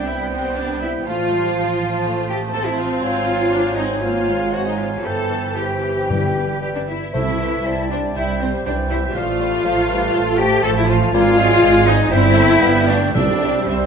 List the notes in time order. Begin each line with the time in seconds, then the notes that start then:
Already playing: C2 G3 B3 C5 G5
0.06 E4 E5
0.31 C4 C5
0.55 D4 D5
0.80 E4 E5
1.06 A1 F3 A3 F4 C5 F5 A5
1.31 G3
1.56 F3
2.05 A3
2.29 G4 G5
2.54 C4 A4 A5
2.66 E4 E5
2.78 F4 F5
3.02 G#1 F#3 F4 C5 F5 G#5
3.52 D4
3.77 C4 D#4 D#5
4.02 A#3 F4 F5
4.27 G#3
4.52 F#3 F#4 C5 F#5 G#5
4.65 D#4 D#5
4.78 F4 F5
5.05 G1 E3 A4 C5 G5 A5
5.57 E3 G4 C5 G5
6.09 G2 G3 B4 G5
6.61 G3 G4 B4 G5
6.75 D4 D5
6.87 E4 E5
7.13 C2 C3 A3 E4 C5 E5
7.40 B4 C5
7.65 C2 G3 C5 A5
7.90 D4 C5 D5
8.15 C2 G3 E4 C5 E5 G5
8.40 C4 C5
8.65 C2 E3 D4 C5 D5 G5
8.90 E4 C5 E5
9.09 G4
9.15 A1 F3 A3 F4 C5 D5 F5
9.40 G3 C5
9.65 A1 F3 A3 C5 F5
9.90 G3 B4 C5
10.14 A1 A3 A4 C5 A5
10.38 G4 C5 G5
10.63 A1 F3 A4 C5 A5
10.76 E4 E5
10.89 F4 C5 F5
11.13 G#1 G#3 A#3 F4 C5 D5 F5 G#5
11.38 F#3 G#3 C5
11.62 G#1 G#3 C5
11.86 C4 D#4 C5 D#5
12.11 G1 G3 C4 E4 C5 E5 G5
12.36 A3 C5
12.61 G1 G3 B3 B4 F5
12.87 A3 D4 B4 D5 F5
13.14 C2 C3 G3 D4 C5 D5 E5
13.42 E5
13.68 C2 C4 C5 E5